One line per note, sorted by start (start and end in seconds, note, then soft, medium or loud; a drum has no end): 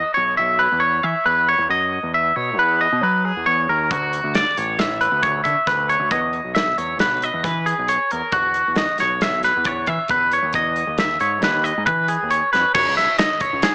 0.00 0.14 D#5 medium
0.14 0.35 B1 medium
0.14 0.37 C#5 medium
0.37 0.66 B1 loud
0.37 0.59 E5 medium
0.59 0.81 B4 medium
0.72 0.99 E2 medium
0.80 1.03 C#5 medium
1.03 1.13 E3 medium
1.03 1.25 E5 medium
1.26 1.54 E2 medium
1.26 1.48 B4 medium
1.49 1.70 C#5 medium
1.59 1.68 E2 medium
1.69 1.98 F#2 medium
1.69 2.14 D#5 medium
2.03 2.31 E2 medium
2.14 2.36 E5 medium
2.36 2.58 B2 medium
2.36 2.58 C#5 medium
2.58 2.86 E2 medium
2.58 2.80 B4 medium
2.81 3.02 D#5 medium
2.92 3.01 B2 medium
3.03 3.31 F#3 medium
3.03 3.25 B4 medium
3.25 3.46 G#4 medium
3.36 3.45 E2 medium
3.46 3.66 E2 medium
3.46 3.68 C#5 medium
3.69 3.89 D#2 medium
3.69 3.91 A#4 medium
3.91 4.19 D2 medium
3.91 4.35 F#4 medium
3.91 kick loud
3.91 closed hi-hat medium
4.13 closed hi-hat medium
4.24 4.42 D2 medium
4.35 4.58 D5 medium
4.35 snare loud
4.35 closed hi-hat medium
4.57 4.76 A1 medium
4.57 4.79 C#5 medium
4.57 closed hi-hat medium
4.79 5.07 A1 medium
4.79 5.01 E5 medium
4.79 snare loud
4.79 closed hi-hat medium
5.01 5.23 B4 medium
5.01 closed hi-hat medium
5.12 5.40 D2 medium
5.23 5.44 C#5 medium
5.23 kick loud
5.23 closed hi-hat medium
5.44 5.55 D3 medium
5.44 5.66 E5 medium
5.44 kick medium
5.44 closed hi-hat medium
5.67 5.95 D2 medium
5.67 5.89 B4 medium
5.67 kick medium
5.67 snare soft
5.67 closed hi-hat medium
5.89 6.11 C#5 medium
5.89 closed hi-hat medium
6.00 6.09 D2 medium
6.11 6.40 E2 medium
6.11 6.54 D#5 medium
6.11 kick loud
6.11 closed hi-hat medium
6.33 closed hi-hat medium
6.44 6.73 B1 medium
6.55 6.78 E5 medium
6.55 snare loud
6.55 closed hi-hat medium
6.78 7.00 E2 medium
6.78 7.00 C#5 medium
6.78 closed hi-hat medium
6.99 7.28 B1 medium
6.99 7.23 B4 medium
6.99 snare loud
6.99 closed hi-hat medium
7.22 7.43 D#5 medium
7.22 closed hi-hat medium
7.34 7.43 E2 medium
7.43 7.73 E3 medium
7.43 7.66 B4 medium
7.43 kick loud
7.43 snare soft
7.43 closed hi-hat medium
7.66 7.88 G#4 medium
7.66 closed hi-hat medium
7.78 7.97 B1 medium
7.88 8.11 C#5 medium
7.88 closed hi-hat medium
8.10 8.21 E2 medium
8.10 8.33 A#4 medium
8.10 closed hi-hat medium
8.32 8.61 E2 medium
8.32 8.77 F#4 loud
8.32 kick loud
8.32 closed hi-hat medium
8.54 closed hi-hat medium
8.68 8.86 E2 medium
8.76 8.99 D#5 medium
8.76 snare loud
8.76 closed hi-hat medium
8.98 9.19 B1 loud
8.98 9.22 C#5 medium
8.98 snare soft
8.98 closed hi-hat medium
9.21 9.51 B1 loud
9.21 9.43 E5 medium
9.21 snare loud
9.21 closed hi-hat medium
9.43 9.66 B4 medium
9.43 snare soft
9.43 closed hi-hat medium
9.57 9.84 E2 medium
9.65 9.88 C#5 medium
9.65 kick loud
9.65 closed hi-hat medium
9.87 9.97 E3 medium
9.87 10.10 E5 medium
9.87 kick medium
9.87 closed hi-hat medium
10.08 10.38 E2 medium
10.08 10.32 B4 medium
10.08 kick loud
10.08 closed hi-hat medium
10.31 10.55 C#5 medium
10.31 closed hi-hat medium
10.43 10.52 D#2 medium
10.53 10.83 E2 medium
10.53 10.99 D#5 medium
10.53 kick medium
10.53 closed hi-hat medium
10.76 closed hi-hat medium
10.87 11.16 D#2 medium
10.98 11.20 E5 medium
10.98 snare loud
10.98 closed hi-hat medium
11.20 11.44 G#2 medium
11.20 11.43 C#5 medium
11.20 closed hi-hat medium
11.42 11.72 D#2 medium
11.42 11.64 B4 medium
11.42 snare loud
11.42 closed hi-hat medium
11.64 11.86 D#5 medium
11.64 closed hi-hat medium
11.78 11.86 G#2 medium
11.86 12.16 E3 medium
11.86 12.09 B4 medium
11.86 kick loud
11.86 closed hi-hat medium
12.08 12.31 G#4 medium
12.08 closed hi-hat medium
12.23 12.40 D#2 medium
12.30 12.52 C#5 medium
12.30 closed hi-hat medium
12.53 12.64 F2 medium
12.53 12.74 B4 medium
12.53 snare soft
12.53 closed hi-hat medium
12.74 12.85 F#2 medium
12.74 12.97 C#5 loud
12.74 kick loud
12.74 crash loud
12.88 13.06 C#2 medium
12.97 13.18 E5 medium
12.97 snare soft
12.97 closed hi-hat medium
13.19 13.41 D#5 medium
13.19 snare loud
13.19 closed hi-hat loud
13.40 13.64 C#5 medium
13.40 kick medium
13.40 closed hi-hat medium
13.53 13.62 C#2 medium
13.62 13.75 G#4 medium
13.62 snare loud
13.62 closed hi-hat medium